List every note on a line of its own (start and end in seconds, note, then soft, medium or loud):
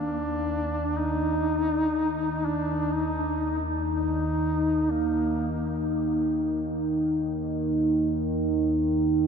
0.00 9.27 D#2 medium
0.00 9.27 D#3 medium
0.00 0.99 D4 medium
0.98 2.47 D#4 medium
2.45 2.96 D4 medium
2.95 3.65 D#4 medium
3.93 4.92 D#4 medium
4.91 5.88 A#3 medium